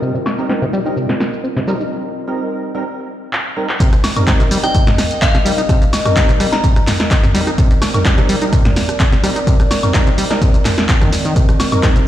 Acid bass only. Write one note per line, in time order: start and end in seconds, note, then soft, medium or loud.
0.02 0.12 C3 medium
0.15 0.18 C3 medium
0.49 0.54 C4 medium
0.62 0.66 C3 loud
0.73 0.80 G3 loud
0.85 0.89 D#4 medium
0.97 1.07 C3 medium
1.09 1.13 C3 medium
1.44 1.48 C4 medium
1.56 1.60 C3 loud
1.67 1.74 G3 loud
1.80 1.84 D#4 medium
3.80 3.91 C3 medium
3.93 3.96 C3 medium
4.27 4.32 C4 medium
4.40 4.44 C3 loud
4.51 4.58 G3 loud
4.64 4.67 D#4 medium
4.75 4.85 C3 medium
4.87 4.91 C3 medium
5.22 5.26 C4 medium
5.34 5.38 C3 loud
5.45 5.52 G3 loud
5.58 5.62 D#4 medium
5.69 5.79 C3 medium
5.81 5.85 C3 medium
6.16 6.21 C4 medium
6.29 6.33 C3 loud
6.40 6.47 G3 loud
6.53 6.56 D#4 medium
6.63 6.74 C3 medium
6.76 6.80 C3 medium
7.11 7.15 C4 medium
7.23 7.27 C3 loud
7.34 7.41 G3 loud
7.47 7.51 D#4 medium
7.58 7.69 C3 medium
7.71 7.74 C3 medium
8.05 8.10 C4 medium
8.18 8.22 C3 loud
8.29 8.36 G3 loud
8.42 8.45 D#4 medium
8.53 8.63 C3 medium
8.65 8.69 C3 medium
9.00 9.04 C4 medium
9.12 9.16 C3 loud
9.23 9.30 G3 loud
9.36 9.40 D#4 medium
9.47 9.57 C3 medium
9.60 9.63 C3 medium
9.94 9.98 C4 medium
10.07 10.10 C3 loud
10.18 10.25 G3 loud
10.30 10.34 D#4 medium
10.42 10.52 C3 medium
10.54 10.58 C3 medium
10.89 10.93 C4 medium
11.01 11.11 D#3 loud
11.25 11.34 D#3 loud
11.36 11.46 C3 medium
11.49 11.52 C3 medium
11.83 11.87 C4 medium
11.96 12.00 C3 loud